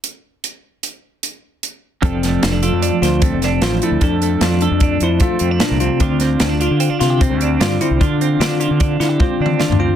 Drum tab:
HH |x-----x-----x-----x-----x-----|x--x--x--x--x--x--x--x--x--x--|x--x--x--x--x--x--x--x--x--x--|x--x--x--x--x--x--x--x--x--x--|
SD |------------------------------|---o--o--------o-----o--o-----|------o-----------------o-----|---o--o--------o--------o-----|
T1 |------------------------------|------------------------------|------------------------------|------------------------------|
T2 |------------------------------|------------------------------|------------------------------|------------------------------|
FT |------------------------------|------------------------------|------------------------------|------------------------------|
BD |------------------------------|o-----------------o-----------|o-----------o-----o-----------|o-----------------o-----------|

HH |x--x--x--x--x--x--------------|
SD |------o--------o--------o-----|
T1 |------------------o-----------|
T2 |----------------------o-------|
FT |--------------------------o---|
BD |o-----------o-----o-----------|